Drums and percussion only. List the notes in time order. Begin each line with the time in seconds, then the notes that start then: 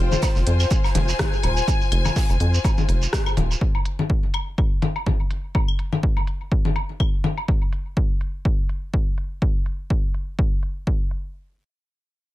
0.12 low conga, shekere
0.22 kick, snare, low woodblock, shaker, shekere
0.35 snare, shekere
0.47 closed hi-hat, shaker
0.60 snare, claves, shekere
0.71 kick, shekere, shaker
0.84 snare, low woodblock, shekere
0.95 snare, closed hi-hat, low conga, shaker
1.08 snare, shekere
1.19 kick, cross-stick, snare, low conga, shekere, shaker
1.33 shekere
1.43 snare, closed hi-hat, low woodblock, shaker
1.57 shekere
1.68 kick, shaker, shekere
1.81 shekere
1.92 closed hi-hat, claves, shaker
2.05 low conga, low woodblock, shekere
2.16 kick, snare, open hi-hat, shekere
2.30 closed hi-hat, shekere
2.40 closed hi-hat, shaker
2.54 shekere
2.64 kick, low woodblock, shaker, shekere
2.78 low conga, shekere
2.89 closed hi-hat, shaker
3.02 shekere
3.13 kick, cross-stick, snare, shekere, shaker
3.26 claves, low woodblock, shekere
3.37 closed hi-hat, low conga, shaker
3.51 shekere
3.61 kick
3.75 low woodblock
3.85 closed hi-hat
3.99 low conga
4.10 kick
4.34 closed hi-hat, claves, low woodblock
4.58 kick
4.82 closed hi-hat, low conga
4.96 low woodblock
5.06 kick, low conga
5.31 closed hi-hat
5.55 kick, low woodblock
5.68 claves
5.79 closed hi-hat
5.93 low conga
6.03 kick
6.17 low woodblock
6.27 closed hi-hat
6.52 kick
6.65 low conga
6.76 closed hi-hat, low woodblock
7.00 kick, claves
7.24 closed hi-hat, low conga
7.38 low woodblock
7.48 kick
7.73 closed hi-hat
7.97 kick
8.21 closed hi-hat
8.45 kick
8.69 closed hi-hat
8.94 kick
9.18 closed hi-hat
9.42 kick
9.66 closed hi-hat
9.90 kick
10.14 closed hi-hat
10.39 kick
10.63 closed hi-hat
10.87 kick
11.11 closed hi-hat